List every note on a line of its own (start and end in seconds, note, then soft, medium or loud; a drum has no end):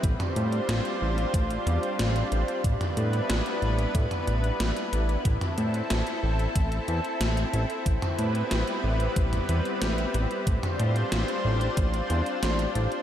0.00 0.16 A1 loud
0.00 5.21 G3 medium
0.00 2.60 C4 medium
0.00 5.21 D4 medium
0.00 2.62 F4 medium
0.00 2.62 C5 medium
0.00 kick loud
0.00 closed hi-hat medium
0.20 closed hi-hat soft
0.20 mid tom loud
0.36 0.60 A2 medium
0.36 closed hi-hat medium
0.52 closed hi-hat soft
0.69 0.81 A1 loud
0.69 snare loud
0.69 closed hi-hat loud
0.85 closed hi-hat soft
1.01 1.26 A1 medium
1.18 closed hi-hat soft
1.34 1.58 A1 medium
1.34 kick loud
1.34 closed hi-hat medium
1.50 closed hi-hat soft
1.67 1.79 E2 loud
1.67 closed hi-hat medium
1.83 closed hi-hat soft
1.99 2.23 A1 loud
1.99 snare loud
1.99 closed hi-hat medium
2.16 closed hi-hat soft
2.32 2.44 A1 medium
2.32 closed hi-hat medium
2.48 closed hi-hat soft
2.64 2.76 A1 loud
2.64 5.23 B3 medium
2.64 10.43 E4 medium
2.64 5.23 B4 medium
2.64 kick loud
2.64 closed hi-hat medium
2.81 closed hi-hat soft
2.81 mid tom loud
2.97 3.21 A2 medium
2.97 closed hi-hat medium
3.13 closed hi-hat soft
3.30 3.42 A1 loud
3.30 snare loud
3.30 closed hi-hat medium
3.46 closed hi-hat soft
3.62 3.86 A1 medium
3.62 closed hi-hat soft
3.79 closed hi-hat soft
3.95 4.07 A2 loud
3.95 kick loud
3.95 closed hi-hat medium
4.11 closed hi-hat soft
4.11 mid tom medium
4.27 4.52 A1 medium
4.27 closed hi-hat medium
4.44 closed hi-hat soft
4.60 4.72 A1 medium
4.60 snare loud
4.60 closed hi-hat medium
4.76 closed hi-hat soft
4.93 5.17 A1 loud
4.93 closed hi-hat medium
5.09 closed hi-hat soft
5.25 5.37 A1 loud
5.25 13.02 C4 medium
5.25 7.83 A4 medium
5.25 kick loud
5.25 closed hi-hat medium
5.41 closed hi-hat soft
5.41 mid tom medium
5.58 5.82 A2 medium
5.58 closed hi-hat medium
5.74 closed hi-hat soft
5.90 6.02 A1 loud
5.90 snare loud
5.90 closed hi-hat medium
6.07 closed hi-hat soft
6.23 6.47 A1 loud
6.39 closed hi-hat soft
6.56 6.80 A1 medium
6.56 kick loud
6.56 closed hi-hat medium
6.72 closed hi-hat soft
6.88 7.00 E2 loud
6.88 closed hi-hat medium
7.04 closed hi-hat soft
7.21 7.45 A1 loud
7.21 snare loud
7.21 closed hi-hat medium
7.37 closed hi-hat soft
7.53 7.65 A1 loud
7.53 closed hi-hat medium
7.70 closed hi-hat soft
7.86 7.98 A1 loud
7.86 13.02 G3 medium
7.86 10.44 B3 medium
7.86 10.44 B4 medium
7.86 kick loud
7.86 closed hi-hat medium
8.02 closed hi-hat soft
8.02 mid tom medium
8.19 8.43 A2 medium
8.19 closed hi-hat medium
8.35 closed hi-hat soft
8.51 8.63 A1 loud
8.51 snare loud
8.51 closed hi-hat medium
8.67 closed hi-hat soft
8.84 9.08 A1 loud
9.00 closed hi-hat soft
9.16 9.41 A1 medium
9.16 kick loud
9.16 closed hi-hat medium
9.33 closed hi-hat soft
9.33 mid tom medium
9.49 9.61 E2 loud
9.49 closed hi-hat medium
9.65 closed hi-hat soft
9.82 10.06 A1 loud
9.82 snare loud
9.82 closed hi-hat medium
9.98 closed hi-hat soft
10.14 10.26 A1 medium
10.14 closed hi-hat medium
10.31 closed hi-hat soft
10.47 10.59 A1 loud
10.47 13.02 D4 medium
10.47 13.02 F4 medium
10.47 13.02 C5 medium
10.47 kick loud
10.47 closed hi-hat medium
10.63 closed hi-hat soft
10.63 mid tom medium
10.79 11.04 A2 medium
10.79 closed hi-hat medium
10.96 closed hi-hat soft
11.12 11.24 A1 loud
11.12 snare loud
11.12 closed hi-hat medium
11.28 closed hi-hat soft
11.45 11.69 A1 loud
11.61 closed hi-hat soft
11.77 12.02 A1 medium
11.77 kick loud
11.77 closed hi-hat medium
11.94 closed hi-hat soft
12.10 12.22 E2 loud
12.10 closed hi-hat medium
12.26 closed hi-hat soft
12.43 12.67 A1 loud
12.43 snare loud
12.43 closed hi-hat medium
12.59 closed hi-hat soft
12.75 12.87 A1 medium
12.75 closed hi-hat medium
12.92 closed hi-hat soft